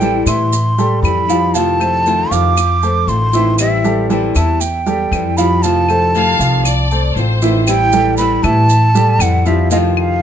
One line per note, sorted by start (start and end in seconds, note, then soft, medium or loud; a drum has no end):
0.00 0.20 A1 medium
0.00 0.51 E3 medium
0.00 0.52 G3 medium
0.00 0.23 G3 medium
0.00 0.52 C4 medium
0.00 0.52 E4 medium
0.00 0.23 G4 medium
0.00 0.23 A4 medium
0.00 0.23 G5 medium
0.00 maracas soft
0.26 0.99 A2 medium
0.26 0.69 E3 medium
0.26 0.69 E4 medium
0.26 0.69 E5 medium
0.26 1.00 C6 medium
0.26 claves medium
0.26 maracas medium
0.52 muted nylon-string guitar stroke medium
0.52 maracas medium
0.78 1.20 G3 medium
0.78 1.20 G4 medium
0.78 1.21 A4 medium
0.78 maracas soft
1.03 2.24 F2 medium
1.03 1.28 E3 medium
1.03 1.28 G3 medium
1.03 1.28 C4 medium
1.03 1.27 E4 medium
1.03 1.55 B5 loud
1.03 claves medium
1.03 maracas soft
1.28 1.50 F3 medium
1.28 1.54 G3 medium
1.28 1.54 C4 medium
1.28 1.53 E4 medium
1.28 1.51 F4 medium
1.28 1.51 F5 medium
1.28 maracas medium
1.54 2.04 C3 medium
1.54 2.05 D#3 medium
1.54 1.76 F3 medium
1.54 2.05 A3 medium
1.54 2.05 C4 medium
1.54 1.76 F4 medium
1.54 2.06 F4 medium
1.54 1.76 F5 medium
1.54 2.33 A5 loud
1.54 maracas medium
1.80 2.22 A3 medium
1.80 2.22 A4 medium
1.80 2.22 C5 medium
1.80 claves medium
1.80 maracas soft
2.05 2.56 C3 medium
2.05 2.56 D#3 medium
2.05 2.56 A3 medium
2.05 2.57 C4 medium
2.05 2.57 F4 medium
2.05 maracas soft
2.31 3.04 F2 medium
2.31 2.73 F3 medium
2.31 2.73 F4 medium
2.31 2.73 F5 medium
2.31 3.10 D6 loud
2.31 maracas medium
2.57 muted nylon-string guitar stroke medium
2.57 claves medium
2.57 maracas medium
2.83 3.25 A3 medium
2.83 3.25 A4 medium
2.83 3.25 C5 medium
2.83 maracas soft
3.07 4.29 A1 medium
3.07 3.33 D#3 soft
3.07 3.33 A3 medium
3.07 3.33 C4 medium
3.07 3.32 F4 medium
3.07 3.59 C6 loud
3.07 maracas soft
3.33 3.59 D#3 medium
3.33 3.76 E3 medium
3.33 3.59 A3 medium
3.33 3.58 C4 medium
3.33 3.76 E4 medium
3.33 3.58 F4 medium
3.33 3.76 E5 medium
3.33 maracas medium
3.59 4.09 E3 medium
3.59 4.10 G3 medium
3.59 4.10 C4 medium
3.59 4.10 E4 medium
3.59 4.06 E5 medium
3.59 claves medium
3.59 maracas medium
3.84 4.06 G3 medium
3.84 4.06 G4 medium
3.84 4.06 A4 medium
3.84 maracas soft
4.10 4.60 E3 medium
4.10 4.31 G3 medium
4.10 4.60 G3 medium
4.10 4.60 C4 medium
4.10 4.61 E4 medium
4.10 4.31 G4 medium
4.10 4.31 A4 medium
4.10 maracas soft
4.35 5.08 E2 medium
4.35 4.77 E3 medium
4.35 4.78 E4 medium
4.35 4.78 E5 medium
4.35 4.62 A5 medium
4.35 claves medium
4.35 maracas medium
4.60 5.38 G5 medium
4.60 muted nylon-string guitar stroke medium
4.60 maracas medium
4.86 5.29 G3 medium
4.86 5.29 G4 medium
4.86 5.29 A4 medium
4.86 maracas soft
5.12 6.33 F2 medium
5.12 5.38 E3 medium
5.12 5.38 G3 soft
5.12 5.38 C4 medium
5.12 5.37 E4 medium
5.12 claves medium
5.12 maracas soft
5.37 5.59 F3 medium
5.37 5.64 G3 medium
5.37 5.63 C4 medium
5.37 5.62 E4 medium
5.37 5.59 F4 medium
5.37 5.59 F5 medium
5.37 5.64 B5 loud
5.37 maracas medium
5.62 6.13 C3 medium
5.62 6.14 D#3 medium
5.62 5.85 F3 medium
5.62 6.14 A3 medium
5.62 6.15 C4 medium
5.62 5.85 F4 medium
5.62 6.15 F4 medium
5.62 5.85 F5 medium
5.62 7.16 A5 loud
5.62 maracas medium
5.89 6.31 A3 medium
5.89 6.32 A4 medium
5.89 6.32 C5 medium
5.89 claves medium
5.89 maracas soft
6.14 6.65 C3 medium
6.14 6.65 D#3 medium
6.14 6.65 A3 medium
6.14 6.66 C4 medium
6.14 6.66 F4 medium
6.14 6.62 F5 loud
6.14 maracas soft
6.39 7.12 C2 medium
6.39 6.82 F3 medium
6.39 6.82 F4 medium
6.39 6.82 F5 medium
6.39 maracas medium
6.65 7.13 D5 medium
6.65 muted nylon-string guitar stroke medium
6.65 claves medium
6.65 maracas medium
6.91 7.33 A3 medium
6.91 7.33 A4 medium
6.91 7.34 C5 medium
6.91 maracas soft
7.15 8.38 A1 medium
7.15 7.41 D#3 medium
7.15 7.42 A3 soft
7.15 7.42 C4 medium
7.15 7.41 F4 medium
7.15 7.67 C5 medium
7.15 maracas soft
7.42 7.66 D#3 medium
7.42 7.63 E3 medium
7.42 7.67 A3 medium
7.42 7.67 C4 medium
7.42 7.63 E4 medium
7.42 7.67 F4 medium
7.42 7.63 E5 medium
7.42 maracas medium
7.67 8.17 E3 medium
7.67 8.18 G3 medium
7.67 8.18 C4 medium
7.67 8.18 E4 medium
7.67 8.15 G5 loud
7.67 claves medium
7.67 maracas medium
7.92 8.35 G3 medium
7.92 8.35 G4 medium
7.92 8.36 A4 medium
7.92 maracas medium
8.17 8.68 E3 medium
8.17 8.69 G3 medium
8.17 8.69 C4 medium
8.17 8.69 E4 medium
8.17 8.44 B5 loud
8.17 maracas medium
8.43 9.17 A2 medium
8.43 8.86 E3 loud
8.43 8.86 E4 medium
8.43 8.86 E5 medium
8.43 9.23 A5 loud
8.43 claves medium
8.43 maracas soft
8.69 muted nylon-string guitar stroke medium
8.69 maracas medium
8.95 9.37 G3 medium
8.95 9.37 G4 medium
8.95 9.38 A4 medium
8.95 maracas medium
9.19 10.22 F2 medium
9.19 9.45 E3 medium
9.19 9.45 G3 medium
9.19 9.45 C4 medium
9.19 9.44 E4 medium
9.19 9.48 F#5 loud
9.19 claves medium
9.19 maracas medium
9.45 9.67 F3 medium
9.45 9.71 G3 medium
9.45 9.70 C4 medium
9.45 9.70 E4 medium
9.45 9.67 F4 medium
9.45 9.71 E5 medium
9.45 9.68 F5 medium
9.45 maracas soft
9.70 10.21 C3 medium
9.70 10.21 D#3 medium
9.70 10.14 F3 medium
9.70 10.22 A3 medium
9.70 10.22 C4 medium
9.70 10.14 F4 medium
9.70 10.22 F4 medium
9.70 9.77 D#5 medium
9.70 10.14 F5 medium
9.70 maracas medium
9.97 10.22 F5 medium
9.97 claves medium